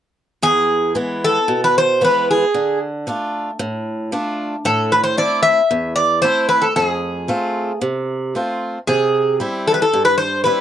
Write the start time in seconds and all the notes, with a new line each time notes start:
0.42 E2 G#4
0.95 E3 G#3 B3
1.24 A4
1.48 B2
1.64 B4
1.78 C5
2.01 E3 G#3 B3 B4
2.31 G#4
2.54 D3
3.07 A3 D4 F4
3.59 A2
4.12 A3 D4 F4
4.65 A2 A4
4.92 B4
5.04 C5
5.17 A3 C4 E4 D5
5.43 E5
5.71 E2
5.96 D5
6.22 A3 C4 E4 C5
6.49 B4
6.62 A4
6.76 F2 G#4
7.28 A3 C4 F4
7.81 C3
8.35 A3 C4 F4
8.87 C3 G#4
9.40 G3 C4 E4
9.68 A4
9.74 B4
9.82 A4
9.93 G2
10.05 B4
10.18 C5
10.44 G3 C4 E4 B4